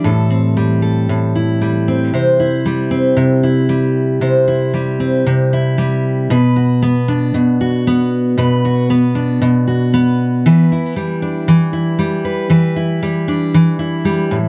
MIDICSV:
0, 0, Header, 1, 2, 480
1, 0, Start_track
1, 0, Key_signature, 1, "minor"
1, 0, Tempo, 521286
1, 41, Time_signature, 4, 2, 24, 8
1, 6282, Tempo, 517688
1, 13388, End_track
2, 0, Start_track
2, 0, Title_t, "Steel-string acoustic guitar"
2, 0, Program_c, 0, 25
2, 0, Note_on_c, 0, 52, 73
2, 0, Note_on_c, 0, 55, 62
2, 0, Note_on_c, 0, 64, 51
2, 39, Note_on_c, 0, 45, 67
2, 46, Note_on_c, 0, 69, 60
2, 280, Note_on_c, 0, 60, 50
2, 520, Note_off_c, 0, 55, 0
2, 523, Note_on_c, 0, 55, 67
2, 746, Note_off_c, 0, 69, 0
2, 757, Note_on_c, 0, 69, 53
2, 995, Note_off_c, 0, 45, 0
2, 1006, Note_on_c, 0, 45, 69
2, 1244, Note_off_c, 0, 64, 0
2, 1247, Note_on_c, 0, 64, 50
2, 1484, Note_off_c, 0, 55, 0
2, 1487, Note_on_c, 0, 55, 61
2, 1728, Note_off_c, 0, 60, 0
2, 1731, Note_on_c, 0, 60, 48
2, 1963, Note_off_c, 0, 45, 0
2, 1967, Note_on_c, 0, 48, 60
2, 1970, Note_off_c, 0, 69, 0
2, 1973, Note_on_c, 0, 72, 56
2, 2203, Note_off_c, 0, 64, 0
2, 2206, Note_on_c, 0, 64, 53
2, 2286, Note_off_c, 0, 52, 0
2, 2442, Note_off_c, 0, 55, 0
2, 2446, Note_on_c, 0, 55, 61
2, 2675, Note_off_c, 0, 60, 0
2, 2679, Note_on_c, 0, 60, 58
2, 2904, Note_off_c, 0, 48, 0
2, 2915, Note_on_c, 0, 48, 72
2, 3150, Note_off_c, 0, 64, 0
2, 3161, Note_on_c, 0, 64, 58
2, 3387, Note_off_c, 0, 55, 0
2, 3398, Note_on_c, 0, 55, 61
2, 3867, Note_off_c, 0, 48, 0
2, 3873, Note_off_c, 0, 72, 0
2, 3878, Note_on_c, 0, 48, 72
2, 3884, Note_on_c, 0, 72, 56
2, 4111, Note_off_c, 0, 64, 0
2, 4122, Note_on_c, 0, 64, 50
2, 4351, Note_off_c, 0, 55, 0
2, 4362, Note_on_c, 0, 55, 69
2, 4593, Note_off_c, 0, 60, 0
2, 4604, Note_on_c, 0, 60, 53
2, 4837, Note_off_c, 0, 48, 0
2, 4848, Note_on_c, 0, 48, 76
2, 5082, Note_off_c, 0, 64, 0
2, 5092, Note_on_c, 0, 64, 65
2, 5311, Note_off_c, 0, 55, 0
2, 5322, Note_on_c, 0, 55, 73
2, 5799, Note_off_c, 0, 48, 0
2, 5801, Note_off_c, 0, 72, 0
2, 5803, Note_on_c, 0, 47, 77
2, 5809, Note_on_c, 0, 71, 67
2, 5849, Note_off_c, 0, 55, 0
2, 5849, Note_off_c, 0, 60, 0
2, 5854, Note_off_c, 0, 64, 0
2, 6042, Note_on_c, 0, 66, 56
2, 6284, Note_on_c, 0, 59, 71
2, 6524, Note_on_c, 0, 62, 56
2, 6753, Note_off_c, 0, 47, 0
2, 6764, Note_on_c, 0, 47, 68
2, 6999, Note_off_c, 0, 66, 0
2, 7010, Note_on_c, 0, 66, 57
2, 7252, Note_off_c, 0, 59, 0
2, 7255, Note_on_c, 0, 59, 69
2, 7711, Note_off_c, 0, 47, 0
2, 7722, Note_on_c, 0, 47, 68
2, 7727, Note_off_c, 0, 71, 0
2, 7731, Note_on_c, 0, 71, 64
2, 7964, Note_off_c, 0, 66, 0
2, 7975, Note_on_c, 0, 66, 56
2, 8205, Note_off_c, 0, 59, 0
2, 8208, Note_on_c, 0, 59, 68
2, 8437, Note_off_c, 0, 62, 0
2, 8440, Note_on_c, 0, 62, 56
2, 8676, Note_off_c, 0, 47, 0
2, 8687, Note_on_c, 0, 47, 76
2, 8916, Note_off_c, 0, 66, 0
2, 8927, Note_on_c, 0, 66, 58
2, 9166, Note_off_c, 0, 59, 0
2, 9170, Note_on_c, 0, 59, 77
2, 9654, Note_on_c, 0, 52, 82
2, 9656, Note_off_c, 0, 71, 0
2, 9659, Note_on_c, 0, 71, 69
2, 9692, Note_off_c, 0, 47, 0
2, 9692, Note_off_c, 0, 66, 0
2, 9895, Note_on_c, 0, 64, 58
2, 9923, Note_off_c, 0, 62, 0
2, 10118, Note_off_c, 0, 59, 0
2, 10121, Note_on_c, 0, 55, 71
2, 10362, Note_on_c, 0, 62, 58
2, 10597, Note_off_c, 0, 52, 0
2, 10601, Note_on_c, 0, 52, 88
2, 10829, Note_off_c, 0, 64, 0
2, 10832, Note_on_c, 0, 64, 64
2, 11060, Note_off_c, 0, 55, 0
2, 11071, Note_on_c, 0, 55, 79
2, 11301, Note_off_c, 0, 71, 0
2, 11312, Note_on_c, 0, 71, 69
2, 11539, Note_off_c, 0, 52, 0
2, 11539, Note_off_c, 0, 71, 0
2, 11543, Note_on_c, 0, 52, 80
2, 11550, Note_on_c, 0, 71, 66
2, 11787, Note_off_c, 0, 64, 0
2, 11790, Note_on_c, 0, 64, 60
2, 12023, Note_off_c, 0, 55, 0
2, 12035, Note_on_c, 0, 55, 72
2, 12259, Note_off_c, 0, 62, 0
2, 12270, Note_on_c, 0, 62, 60
2, 12511, Note_off_c, 0, 52, 0
2, 12514, Note_on_c, 0, 52, 83
2, 12740, Note_off_c, 0, 64, 0
2, 12743, Note_on_c, 0, 64, 71
2, 12972, Note_off_c, 0, 55, 0
2, 12983, Note_on_c, 0, 55, 84
2, 13226, Note_on_c, 0, 45, 76
2, 13278, Note_off_c, 0, 55, 0
2, 13281, Note_off_c, 0, 62, 0
2, 13281, Note_off_c, 0, 71, 0
2, 13388, Note_off_c, 0, 45, 0
2, 13388, Note_off_c, 0, 52, 0
2, 13388, Note_off_c, 0, 64, 0
2, 13388, End_track
0, 0, End_of_file